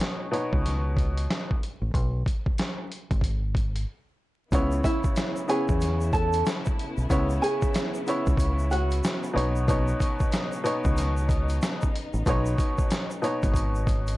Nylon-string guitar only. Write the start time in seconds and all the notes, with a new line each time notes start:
4.84 E4 E5
5.49 G#4 G#5
6.13 A4 A5
7.42 G#4 G#5
8.71 F#4 F#5